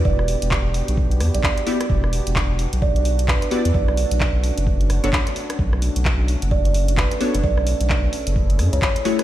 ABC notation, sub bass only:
X:1
M:4/4
L:1/16
Q:"Swing 16ths" 1/4=130
K:Edor
V:1 name="Sub bass" clef=bass
E,,,3 E,,,4 B,,,3 E,, B,,, z4 | E,,,3 E,,,4 B,,,6 z2 E,, | B,,,3 B,,,4 F,,,3 F,,, F,,, z4 | B,,,3 B,,,4 F,,,6 z2 F,,, |
B,,,3 B,,,3 z F,,,3 F,, C,, z4 |]